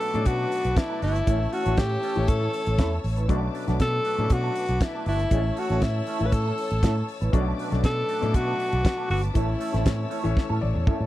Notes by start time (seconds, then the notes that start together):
Already playing: B2 F#3 A3 C#4 D4 A4 B4 A5 D6
0.00 A3 D4 F#4 A4, open hi-hat
0.13 A2 B2 F#3 A3 C#4 D4, muted clean electric guitar stroke, closed hi-hat
0.25 B2 F#4, muted clean electric guitar stroke, kick, closed hi-hat
0.39 A3 D4 F#4 A4
0.52 open hi-hat
0.64 B1, muted clean electric guitar stroke, closed hi-hat
0.76 E4, muted clean electric guitar stroke, kick, snare, closed hi-hat
0.89 A3 D4 F#4 A4
1.01 G1 A3 D4 E4 F#4 A4, open hi-hat
1.15 muted clean electric guitar stroke, closed hi-hat
1.27 A1 E3 A3 C#4 E4 A4 C#5 E6, kick, closed hi-hat
1.40 muted clean electric guitar stroke
1.52 A3 C#4 E4 F#4 A4, open hi-hat
1.66 A1 E3 A3 C#4 E4 A4, closed hi-hat
1.77 A2 G4, kick, snare, closed hi-hat
1.91 muted clean electric guitar stroke
2.03 A3 C#4 E4 A4, open hi-hat
2.15 A1 E3 A3 C#4, muted clean electric guitar stroke, closed hi-hat
2.28 A2 A4, muted clean electric guitar stroke, kick, closed hi-hat
2.41 A3 C#4 E4 A4
2.53 muted clean electric guitar stroke, open hi-hat
2.66 A1, muted clean electric guitar stroke, closed hi-hat
2.78 E2 A3 C#4 E4 A4, kick, snare, closed hi-hat
2.92 muted clean electric guitar stroke
3.04 A1, muted clean electric guitar stroke, open hi-hat
3.17 A3 C#4 E4 B4, closed hi-hat
3.28 B1 B2 F#3 A3 C#4 D4 F#4 A4 B4 A5 D6, kick, closed hi-hat
3.42 muted clean electric guitar stroke
3.54 A3 D4 F#4 A4, open hi-hat
3.67 B1 B2 F#3 A3 C#4 D4 F#4 A4, snare, closed hi-hat
3.80 B2 A4, kick, snare, closed hi-hat
4.05 A3 D4 F#4 A4, open hi-hat
4.18 A2 B2 F#3 A3 C#4 D4, muted clean electric guitar stroke, closed hi-hat
4.30 B2 F#4, muted clean electric guitar stroke, kick, closed hi-hat
4.43 A3 D4 F#4 A4
4.55 muted clean electric guitar stroke, open hi-hat
4.68 B1, muted clean electric guitar stroke, closed hi-hat
4.80 E4, muted clean electric guitar stroke, kick, snare, closed hi-hat
4.95 A3 D4 F#4 A4
5.06 G1 A3 D4 E4 F#4 A4, open hi-hat
5.19 muted clean electric guitar stroke, closed hi-hat
5.31 A1 E3 A3 C#4 E4 A4 C#5 E6, kick, closed hi-hat
5.45 muted clean electric guitar stroke
5.57 A3 C#4 E4 F#4 A4, open hi-hat
5.69 A1 E3 A3 C#4 E4 A4, snare, closed hi-hat
5.82 A2 E4, kick, snare, closed hi-hat
5.95 muted clean electric guitar stroke
6.07 A3 C#4 E4 A4, open hi-hat
6.19 A1 E3 A3 C#4, muted clean electric guitar stroke, closed hi-hat
6.26 B4
6.32 A2 A4, muted clean electric guitar stroke, kick, closed hi-hat
6.45 A3 C#4 E4 A4
6.57 muted clean electric guitar stroke, open hi-hat
6.71 A1, muted clean electric guitar stroke, closed hi-hat
6.82 A2 A3 C#4 E4 A4, kick, snare, closed hi-hat
6.96 muted clean electric guitar stroke
7.08 muted clean electric guitar stroke, open hi-hat
7.21 A1 A3 C#4 E4 B4, closed hi-hat
7.32 B1 B2 F#3 A3 C#4 D4 F#4 A4 B4 A5 D6, kick, closed hi-hat
7.47 muted clean electric guitar stroke
7.59 A3 D4 F#4 A4, open hi-hat
7.71 B1 B2 F#3 A3 C#4 D4 F#4 A4, snare, closed hi-hat
7.84 B2 A4, kick, snare, closed hi-hat
7.98 muted clean electric guitar stroke
8.09 A3 D4 F#4 A4, open hi-hat
8.21 A2 B2 F#3 A3 C#4 D4, muted clean electric guitar stroke, closed hi-hat
8.34 B2 F#4, muted clean electric guitar stroke, kick, closed hi-hat
8.47 A3 D4 F#4 A4
8.60 open hi-hat
8.73 B1, muted clean electric guitar stroke, closed hi-hat
8.85 muted clean electric guitar stroke, kick, snare, closed hi-hat
8.98 A3 D4 F#4 A4
9.09 G1 A3 D4 F#4 A4, open hi-hat
9.23 muted clean electric guitar stroke, closed hi-hat
9.34 A1 E3 A3 C#4 E4 A4 C#5 E6, kick, closed hi-hat
9.48 muted clean electric guitar stroke
9.60 A3 C#4 E4 A4, open hi-hat
9.73 A1 E3 A3 C4 C#4 E4 A4, snare, closed hi-hat
9.81 C#4
9.86 A2, kick, snare, closed hi-hat
9.99 muted clean electric guitar stroke
10.10 A3 C#4 E4 A4, open hi-hat
10.23 A1 E3 A3 C#4, muted clean electric guitar stroke, closed hi-hat
10.36 muted clean electric guitar stroke, kick, snare
10.49 A2 A3 C#4 E4 A4
10.61 A1 D5, high tom
10.74 E2, muted clean electric guitar stroke, high tom
10.86 A3 C#4 E4 A4 E5, kick, mid tom
11.00 A2, muted clean electric guitar stroke